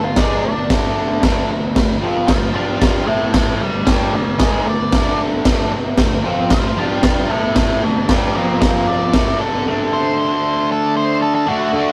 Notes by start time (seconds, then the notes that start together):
Already playing: D3 A3
0.05 F4
0.16 G#3 D4 D#4 G#4, kick, snare, crash
0.44 D3 A3 D4
0.69 D3 A3 D4, kick, snare, crash
1.23 D3 A3 D4, kick, snare, crash
1.49 D3 A3
1.75 D3 A3, kick, snare, crash
2.02 F3 C4 F4
2.28 D3 A3 C5 A5, kick, snare, crash
2.54 G3 D4 G4 C5 A5
2.82 C5 A5, kick, snare, crash
3.07 A3 E4 A4 E5 G5
3.34 E5 G5, kick, snare, crash
3.60 D3 A3 D5 G5
3.85 G3 D4 F#4 G4 D5, kick, snare, crash
4.12 D3 A3 F#4 D5
4.38 G#3 D#4 G#4, kick, snare, crash
4.43 F#4 D5
4.66 D3 A3 D5
4.92 D3 A3 D4, kick, snare, crash
5.45 D3 A3 D4, kick, snare, crash
5.72 D3 A3
5.98 D3 A3, kick, snare, crash
6.24 F3 C4 F4
6.50 D3 A3 C5 A5, kick, snare, crash
6.76 G3 D4 G4 C5 A5
7.03 C5 A5, kick, snare, crash
7.30 A3 E4 A4 E5 G5
7.56 E5 G5, kick, snare, crash
7.83 D3 A3 A4 F5
8.08 G3 D4 F#4 G4 D5, kick, snare, crash
8.35 F3 C4 F4 D5
8.62 F4 D5, kick, snare, crash
8.88 D5
9.13 A3 E4 A4, kick, snare, crash
9.40 D4 A4 D5
9.64 D3 A3
9.70 D4
9.93 C5
10.72 A4
10.97 C5
11.22 A4
11.35 A4
11.47 A3 D4 F#4
11.52 D3
11.73 D3 A3
11.78 D4